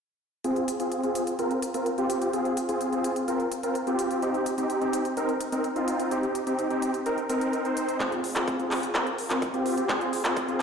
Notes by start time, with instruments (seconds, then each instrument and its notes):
0.44 supersaw synth C4 F4 G#4, closed hi-hat
0.56 closed hi-hat
0.68 closed hi-hat
0.80 supersaw synth C4 F4 G#4, closed hi-hat
0.92 closed hi-hat
1.03 supersaw synth C4 F4 G#4, closed hi-hat
1.15 closed hi-hat
1.27 closed hi-hat
1.39 supersaw synth C4 F4 A#4, closed hi-hat
1.51 closed hi-hat
1.62 closed hi-hat
1.74 supersaw synth C4 F4 A#4, closed hi-hat
1.86 closed hi-hat
1.98 supersaw synth C4 F4 G4, closed hi-hat
2.10 closed hi-hat
2.22 closed hi-hat
2.33 supersaw synth C4 F4 G#4, closed hi-hat
2.45 closed hi-hat
2.57 closed hi-hat
2.69 supersaw synth C4 F4 G#4, closed hi-hat
2.81 closed hi-hat
2.93 supersaw synth C4 F4 G#4, closed hi-hat
3.04 closed hi-hat
3.16 closed hi-hat
3.28 supersaw synth C4 F4 A#4, closed hi-hat
3.40 closed hi-hat
3.52 closed hi-hat
3.63 supersaw synth C4 F4 A#4, closed hi-hat
3.75 closed hi-hat
3.87 supersaw synth C4 F4 G4, closed hi-hat
3.99 closed hi-hat
4.11 closed hi-hat
4.22 supersaw synth C4 D#4 G4, closed hi-hat
4.34 closed hi-hat
4.46 closed hi-hat
4.58 supersaw synth C4 D#4 G4, closed hi-hat
4.70 closed hi-hat
4.82 supersaw synth C4 D#4 G4, closed hi-hat
4.93 closed hi-hat
5.05 closed hi-hat
5.17 supersaw synth C4 D#4 A#4, closed hi-hat
5.29 closed hi-hat
5.41 closed hi-hat
5.52 supersaw synth C4 D#4 A#4, closed hi-hat
5.64 closed hi-hat
5.76 supersaw synth C4 D#4 F4, closed hi-hat
5.88 closed hi-hat
6.00 closed hi-hat
6.11 supersaw synth C4 D#4 G4, closed hi-hat
6.23 closed hi-hat
6.35 closed hi-hat
6.47 supersaw synth C4 D#4 G4, closed hi-hat
6.59 closed hi-hat
6.70 supersaw synth C4 D#4 G4, closed hi-hat
6.82 closed hi-hat
6.94 closed hi-hat
7.06 supersaw synth C4 D#4 A#4, closed hi-hat
7.18 closed hi-hat
7.30 supersaw synth C4 D#4 A#4, closed hi-hat
7.41 closed hi-hat
7.53 closed hi-hat
7.65 supersaw synth C4 D#4 C5, closed hi-hat
7.77 closed hi-hat
7.89 closed hi-hat
8.00 supersaw synth C4 F4 G#4, kick, clap, closed hi-hat
8.12 closed hi-hat
8.24 open hi-hat
8.36 supersaw synth C4 F4 G#4, clap, closed hi-hat
8.48 kick, closed hi-hat
8.59 supersaw synth C4 F4 G#4, closed hi-hat
8.71 clap, open hi-hat
8.83 closed hi-hat
8.95 supersaw synth C4 F4 A#4, kick, clap, closed hi-hat
9.07 closed hi-hat
9.18 open hi-hat
9.30 supersaw synth C4 F4 A#4, clap, closed hi-hat
9.42 kick, closed hi-hat
9.54 supersaw synth C4 F4 G4, closed hi-hat
9.66 open hi-hat
9.78 closed hi-hat
9.89 supersaw synth C4 F4 G#4, kick, clap, closed hi-hat
10.01 closed hi-hat
10.13 open hi-hat
10.25 supersaw synth C4 F4 G#4, clap, closed hi-hat
10.37 kick, closed hi-hat
10.48 supersaw synth C4 F4 G#4, closed hi-hat